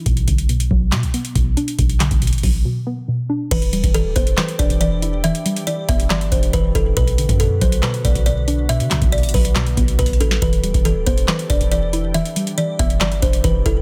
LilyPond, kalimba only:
\new Staff \with { instrumentName = "Kalimba" } { \time 4/4 \key e \minor \tempo 4 = 139 r1 | r1 | b'4 a'8 c''8 b'8 d''8 d''4 | e''4 d''8 e''8 d''8 c''8 b'8 a'8 |
b'4 a'8 c''8 b'8 d''8 d''4 | e''4 d''8 b'4. b'8 a'8 | b'4 a'8 c''8 b'8 d''8 d''4 | e''4 d''8 e''8 d''8 c''8 b'8 a'8 | }